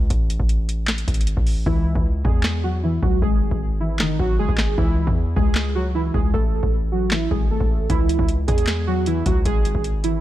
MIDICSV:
0, 0, Header, 1, 4, 480
1, 0, Start_track
1, 0, Key_signature, 4, "minor"
1, 0, Tempo, 389610
1, 128, Time_signature, 4, 2, 24, 8
1, 12574, End_track
2, 0, Start_track
2, 0, Title_t, "Synth keys"
2, 0, Program_c, 0, 88
2, 2050, Note_on_c, 0, 64, 99
2, 2058, Note_on_c, 0, 52, 82
2, 2500, Note_off_c, 0, 64, 0
2, 2505, Note_off_c, 0, 52, 0
2, 2763, Note_on_c, 0, 68, 84
2, 2773, Note_on_c, 0, 56, 62
2, 3217, Note_off_c, 0, 68, 0
2, 3222, Note_off_c, 0, 56, 0
2, 3250, Note_on_c, 0, 66, 82
2, 3260, Note_on_c, 0, 54, 62
2, 3452, Note_off_c, 0, 66, 0
2, 3458, Note_off_c, 0, 54, 0
2, 3494, Note_on_c, 0, 64, 79
2, 3504, Note_on_c, 0, 52, 66
2, 3694, Note_off_c, 0, 64, 0
2, 3699, Note_off_c, 0, 52, 0
2, 3731, Note_on_c, 0, 66, 80
2, 3741, Note_on_c, 0, 54, 65
2, 3932, Note_off_c, 0, 66, 0
2, 3938, Note_off_c, 0, 54, 0
2, 3975, Note_on_c, 0, 68, 98
2, 3985, Note_on_c, 0, 56, 81
2, 4423, Note_off_c, 0, 68, 0
2, 4428, Note_off_c, 0, 56, 0
2, 4687, Note_on_c, 0, 64, 78
2, 4697, Note_on_c, 0, 52, 59
2, 4890, Note_off_c, 0, 64, 0
2, 4896, Note_off_c, 0, 52, 0
2, 4934, Note_on_c, 0, 63, 76
2, 4943, Note_on_c, 0, 51, 62
2, 5134, Note_off_c, 0, 63, 0
2, 5139, Note_off_c, 0, 51, 0
2, 5168, Note_on_c, 0, 66, 88
2, 5177, Note_on_c, 0, 54, 66
2, 5370, Note_off_c, 0, 66, 0
2, 5376, Note_off_c, 0, 54, 0
2, 5409, Note_on_c, 0, 68, 88
2, 5420, Note_on_c, 0, 56, 70
2, 5860, Note_off_c, 0, 68, 0
2, 5865, Note_off_c, 0, 56, 0
2, 5886, Note_on_c, 0, 64, 93
2, 5895, Note_on_c, 0, 52, 82
2, 6338, Note_off_c, 0, 64, 0
2, 6343, Note_off_c, 0, 52, 0
2, 6604, Note_on_c, 0, 68, 77
2, 6614, Note_on_c, 0, 56, 60
2, 7057, Note_off_c, 0, 68, 0
2, 7062, Note_off_c, 0, 56, 0
2, 7088, Note_on_c, 0, 66, 76
2, 7097, Note_on_c, 0, 54, 60
2, 7290, Note_off_c, 0, 66, 0
2, 7296, Note_off_c, 0, 54, 0
2, 7329, Note_on_c, 0, 64, 84
2, 7339, Note_on_c, 0, 52, 65
2, 7531, Note_off_c, 0, 64, 0
2, 7537, Note_off_c, 0, 52, 0
2, 7568, Note_on_c, 0, 68, 78
2, 7577, Note_on_c, 0, 56, 68
2, 7770, Note_off_c, 0, 68, 0
2, 7776, Note_off_c, 0, 56, 0
2, 7808, Note_on_c, 0, 69, 94
2, 7818, Note_on_c, 0, 57, 80
2, 8259, Note_off_c, 0, 69, 0
2, 8264, Note_off_c, 0, 57, 0
2, 8525, Note_on_c, 0, 66, 78
2, 8534, Note_on_c, 0, 54, 58
2, 8729, Note_off_c, 0, 66, 0
2, 8734, Note_off_c, 0, 54, 0
2, 8769, Note_on_c, 0, 64, 86
2, 8779, Note_on_c, 0, 52, 66
2, 8971, Note_off_c, 0, 64, 0
2, 8977, Note_off_c, 0, 52, 0
2, 9006, Note_on_c, 0, 68, 82
2, 9016, Note_on_c, 0, 56, 61
2, 9209, Note_off_c, 0, 68, 0
2, 9215, Note_off_c, 0, 56, 0
2, 9252, Note_on_c, 0, 69, 77
2, 9261, Note_on_c, 0, 57, 64
2, 9701, Note_off_c, 0, 69, 0
2, 9706, Note_off_c, 0, 57, 0
2, 9729, Note_on_c, 0, 64, 101
2, 9739, Note_on_c, 0, 52, 84
2, 10180, Note_off_c, 0, 64, 0
2, 10185, Note_off_c, 0, 52, 0
2, 10442, Note_on_c, 0, 68, 85
2, 10452, Note_on_c, 0, 56, 59
2, 10896, Note_off_c, 0, 68, 0
2, 10901, Note_off_c, 0, 56, 0
2, 10931, Note_on_c, 0, 66, 82
2, 10940, Note_on_c, 0, 54, 63
2, 11132, Note_off_c, 0, 66, 0
2, 11137, Note_off_c, 0, 54, 0
2, 11174, Note_on_c, 0, 64, 77
2, 11184, Note_on_c, 0, 52, 66
2, 11374, Note_off_c, 0, 64, 0
2, 11380, Note_off_c, 0, 52, 0
2, 11412, Note_on_c, 0, 66, 77
2, 11421, Note_on_c, 0, 54, 65
2, 11613, Note_off_c, 0, 66, 0
2, 11618, Note_off_c, 0, 54, 0
2, 11657, Note_on_c, 0, 68, 98
2, 11668, Note_on_c, 0, 56, 83
2, 12104, Note_off_c, 0, 68, 0
2, 12110, Note_off_c, 0, 56, 0
2, 12369, Note_on_c, 0, 64, 76
2, 12379, Note_on_c, 0, 52, 59
2, 12571, Note_off_c, 0, 64, 0
2, 12574, Note_off_c, 0, 52, 0
2, 12574, End_track
3, 0, Start_track
3, 0, Title_t, "808-style bass"
3, 0, Program_c, 1, 38
3, 127, Note_on_c, 1, 33, 115
3, 473, Note_off_c, 1, 33, 0
3, 487, Note_on_c, 1, 33, 99
3, 1294, Note_off_c, 1, 33, 0
3, 1326, Note_on_c, 1, 32, 100
3, 1673, Note_off_c, 1, 32, 0
3, 1687, Note_on_c, 1, 33, 97
3, 2033, Note_off_c, 1, 33, 0
3, 2048, Note_on_c, 1, 37, 112
3, 2394, Note_off_c, 1, 37, 0
3, 2407, Note_on_c, 1, 37, 103
3, 2753, Note_off_c, 1, 37, 0
3, 2769, Note_on_c, 1, 40, 104
3, 3690, Note_off_c, 1, 40, 0
3, 3727, Note_on_c, 1, 37, 97
3, 3958, Note_off_c, 1, 37, 0
3, 3968, Note_on_c, 1, 32, 112
3, 4314, Note_off_c, 1, 32, 0
3, 4327, Note_on_c, 1, 32, 103
3, 4928, Note_on_c, 1, 30, 106
3, 4946, Note_off_c, 1, 32, 0
3, 5047, Note_on_c, 1, 32, 99
3, 5066, Note_off_c, 1, 30, 0
3, 5159, Note_off_c, 1, 32, 0
3, 5166, Note_on_c, 1, 32, 106
3, 5407, Note_on_c, 1, 30, 98
3, 5426, Note_off_c, 1, 32, 0
3, 5519, Note_off_c, 1, 30, 0
3, 5527, Note_on_c, 1, 32, 104
3, 5873, Note_off_c, 1, 32, 0
3, 5888, Note_on_c, 1, 37, 114
3, 6234, Note_off_c, 1, 37, 0
3, 6247, Note_on_c, 1, 40, 99
3, 6593, Note_off_c, 1, 40, 0
3, 6609, Note_on_c, 1, 37, 106
3, 7530, Note_off_c, 1, 37, 0
3, 7567, Note_on_c, 1, 37, 102
3, 7798, Note_off_c, 1, 37, 0
3, 7808, Note_on_c, 1, 33, 113
3, 8154, Note_off_c, 1, 33, 0
3, 8167, Note_on_c, 1, 33, 103
3, 8974, Note_off_c, 1, 33, 0
3, 9007, Note_on_c, 1, 32, 105
3, 9353, Note_off_c, 1, 32, 0
3, 9368, Note_on_c, 1, 33, 104
3, 9714, Note_off_c, 1, 33, 0
3, 9729, Note_on_c, 1, 37, 116
3, 10074, Note_off_c, 1, 37, 0
3, 10088, Note_on_c, 1, 37, 100
3, 10434, Note_off_c, 1, 37, 0
3, 10450, Note_on_c, 1, 40, 106
3, 11371, Note_off_c, 1, 40, 0
3, 11407, Note_on_c, 1, 37, 99
3, 11638, Note_off_c, 1, 37, 0
3, 11649, Note_on_c, 1, 32, 116
3, 11994, Note_off_c, 1, 32, 0
3, 12008, Note_on_c, 1, 32, 104
3, 12574, Note_off_c, 1, 32, 0
3, 12574, End_track
4, 0, Start_track
4, 0, Title_t, "Drums"
4, 127, Note_on_c, 9, 36, 111
4, 127, Note_on_c, 9, 42, 75
4, 250, Note_off_c, 9, 42, 0
4, 251, Note_off_c, 9, 36, 0
4, 370, Note_on_c, 9, 42, 69
4, 487, Note_on_c, 9, 36, 83
4, 493, Note_off_c, 9, 42, 0
4, 607, Note_on_c, 9, 42, 67
4, 610, Note_off_c, 9, 36, 0
4, 730, Note_off_c, 9, 42, 0
4, 848, Note_on_c, 9, 42, 77
4, 971, Note_off_c, 9, 42, 0
4, 1078, Note_on_c, 9, 39, 92
4, 1087, Note_on_c, 9, 38, 111
4, 1088, Note_on_c, 9, 42, 50
4, 1201, Note_off_c, 9, 39, 0
4, 1208, Note_off_c, 9, 42, 0
4, 1208, Note_on_c, 9, 42, 79
4, 1211, Note_off_c, 9, 38, 0
4, 1327, Note_on_c, 9, 36, 95
4, 1328, Note_off_c, 9, 42, 0
4, 1328, Note_on_c, 9, 42, 69
4, 1407, Note_off_c, 9, 42, 0
4, 1407, Note_on_c, 9, 42, 70
4, 1450, Note_off_c, 9, 36, 0
4, 1487, Note_off_c, 9, 42, 0
4, 1487, Note_on_c, 9, 42, 65
4, 1565, Note_off_c, 9, 42, 0
4, 1565, Note_on_c, 9, 42, 76
4, 1687, Note_on_c, 9, 36, 96
4, 1688, Note_off_c, 9, 42, 0
4, 1806, Note_on_c, 9, 46, 57
4, 1810, Note_off_c, 9, 36, 0
4, 1929, Note_off_c, 9, 46, 0
4, 2048, Note_on_c, 9, 36, 110
4, 2171, Note_off_c, 9, 36, 0
4, 2407, Note_on_c, 9, 36, 83
4, 2530, Note_off_c, 9, 36, 0
4, 2769, Note_on_c, 9, 36, 104
4, 2892, Note_off_c, 9, 36, 0
4, 2997, Note_on_c, 9, 39, 90
4, 3007, Note_on_c, 9, 38, 111
4, 3121, Note_off_c, 9, 39, 0
4, 3130, Note_off_c, 9, 38, 0
4, 3727, Note_on_c, 9, 36, 102
4, 3850, Note_off_c, 9, 36, 0
4, 3968, Note_on_c, 9, 36, 115
4, 4091, Note_off_c, 9, 36, 0
4, 4327, Note_on_c, 9, 36, 80
4, 4450, Note_off_c, 9, 36, 0
4, 4918, Note_on_c, 9, 39, 86
4, 4927, Note_on_c, 9, 38, 111
4, 5041, Note_off_c, 9, 39, 0
4, 5051, Note_off_c, 9, 38, 0
4, 5167, Note_on_c, 9, 36, 94
4, 5290, Note_off_c, 9, 36, 0
4, 5527, Note_on_c, 9, 36, 98
4, 5639, Note_on_c, 9, 39, 79
4, 5648, Note_on_c, 9, 38, 93
4, 5650, Note_off_c, 9, 36, 0
4, 5762, Note_off_c, 9, 39, 0
4, 5771, Note_off_c, 9, 38, 0
4, 5888, Note_on_c, 9, 36, 114
4, 6011, Note_off_c, 9, 36, 0
4, 6247, Note_on_c, 9, 36, 85
4, 6370, Note_off_c, 9, 36, 0
4, 6609, Note_on_c, 9, 36, 102
4, 6732, Note_off_c, 9, 36, 0
4, 6838, Note_on_c, 9, 39, 90
4, 6847, Note_on_c, 9, 38, 110
4, 6961, Note_off_c, 9, 39, 0
4, 6971, Note_off_c, 9, 38, 0
4, 7567, Note_on_c, 9, 36, 100
4, 7690, Note_off_c, 9, 36, 0
4, 7808, Note_on_c, 9, 36, 109
4, 7931, Note_off_c, 9, 36, 0
4, 8167, Note_on_c, 9, 36, 87
4, 8291, Note_off_c, 9, 36, 0
4, 8759, Note_on_c, 9, 39, 89
4, 8768, Note_on_c, 9, 38, 113
4, 8882, Note_off_c, 9, 39, 0
4, 8892, Note_off_c, 9, 38, 0
4, 9007, Note_on_c, 9, 36, 94
4, 9131, Note_off_c, 9, 36, 0
4, 9368, Note_on_c, 9, 36, 99
4, 9491, Note_off_c, 9, 36, 0
4, 9729, Note_on_c, 9, 36, 112
4, 9729, Note_on_c, 9, 42, 73
4, 9852, Note_off_c, 9, 36, 0
4, 9853, Note_off_c, 9, 42, 0
4, 9971, Note_on_c, 9, 42, 67
4, 10088, Note_on_c, 9, 36, 82
4, 10095, Note_off_c, 9, 42, 0
4, 10207, Note_on_c, 9, 42, 67
4, 10211, Note_off_c, 9, 36, 0
4, 10331, Note_off_c, 9, 42, 0
4, 10448, Note_on_c, 9, 42, 66
4, 10450, Note_on_c, 9, 36, 103
4, 10568, Note_off_c, 9, 42, 0
4, 10568, Note_on_c, 9, 42, 64
4, 10573, Note_off_c, 9, 36, 0
4, 10679, Note_on_c, 9, 39, 90
4, 10686, Note_off_c, 9, 42, 0
4, 10686, Note_on_c, 9, 42, 84
4, 10688, Note_on_c, 9, 38, 112
4, 10802, Note_off_c, 9, 39, 0
4, 10810, Note_off_c, 9, 42, 0
4, 10812, Note_off_c, 9, 38, 0
4, 11166, Note_on_c, 9, 42, 71
4, 11289, Note_off_c, 9, 42, 0
4, 11406, Note_on_c, 9, 42, 83
4, 11408, Note_on_c, 9, 36, 99
4, 11530, Note_off_c, 9, 42, 0
4, 11531, Note_off_c, 9, 36, 0
4, 11648, Note_on_c, 9, 42, 74
4, 11649, Note_on_c, 9, 36, 115
4, 11771, Note_off_c, 9, 42, 0
4, 11772, Note_off_c, 9, 36, 0
4, 11890, Note_on_c, 9, 42, 68
4, 12008, Note_on_c, 9, 36, 81
4, 12013, Note_off_c, 9, 42, 0
4, 12127, Note_on_c, 9, 42, 65
4, 12131, Note_off_c, 9, 36, 0
4, 12250, Note_off_c, 9, 42, 0
4, 12367, Note_on_c, 9, 42, 78
4, 12491, Note_off_c, 9, 42, 0
4, 12574, End_track
0, 0, End_of_file